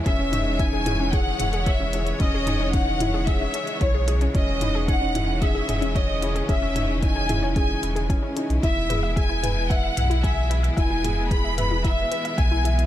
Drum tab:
HH |x-x-x-x-x-xxx-xx|x-x-x-x-x-xxx-xx|x-x-x-x-x-xxx-xx|x-x-x-x-x-xxx-xx|
T2 |--o---o---o-----|--o---o---------|--o---o---o-----|--o---o---------|
BD |o---o---o---o---|o---o---o---o---|o---o---o---o---|o---o---o---o---|

HH |x-x-x-x-x-xxx-xx|x-x-x-x-x-xxx-xx|
T2 |--o---o---o-----|--o---o---------|
BD |o---o---o---o---|o---o---o---o---|